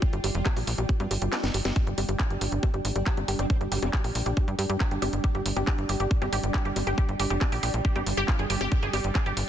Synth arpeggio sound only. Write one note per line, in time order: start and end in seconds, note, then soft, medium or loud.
0.13 0.19 G4 medium
0.24 0.30 G4 medium
0.46 0.51 G4 medium
0.56 0.62 G4 medium
0.78 0.84 G4 medium
0.89 0.95 G4 medium
1.11 1.17 G4 medium
1.22 1.27 G4 medium
1.43 1.49 G4 medium
1.54 1.60 G4 medium
1.76 1.82 G4 medium
1.98 2.02 G4 medium
2.09 2.14 G4 medium
2.30 2.34 G4 medium
2.41 2.47 G4 medium
2.63 2.67 G4 medium
2.74 2.80 G4 medium
2.96 2.99 G4 medium
3.06 3.12 G4 medium
3.28 3.32 G4 medium
3.39 3.45 G4 medium
3.61 3.65 G4 medium
3.72 3.77 G4 medium
3.93 3.97 G4 medium
4.04 4.10 G4 medium
4.26 4.30 G4 medium
4.37 4.43 G4 medium
4.59 4.62 G4 medium
4.70 4.75 G4 medium
4.91 4.95 G4 medium
5.02 5.08 G4 medium
5.24 5.28 G4 medium
5.35 5.40 G4 medium
5.57 5.60 G4 medium
5.67 5.73 G4 medium
5.89 5.93 G4 medium
6.00 6.06 G4 medium
6.22 6.26 G4 medium
6.33 6.38 G4 medium
6.54 6.58 G4 medium
6.65 6.71 G4 medium
6.87 6.91 G4 medium
6.98 7.04 G4 medium
7.20 7.23 G4 medium
7.30 7.36 G4 medium
7.52 7.56 G4 medium
7.63 7.69 G4 medium
7.85 7.89 G4 medium
7.96 8.01 G4 medium
8.17 8.23 G4 loud
8.28 8.32 F4 medium
8.39 8.43 G#4 medium
8.50 8.52 G4 medium
8.61 8.65 G4 loud
8.83 8.86 G#4 medium
8.93 8.99 G4 medium
9.15 9.19 G#4 medium
9.26 9.32 G4 medium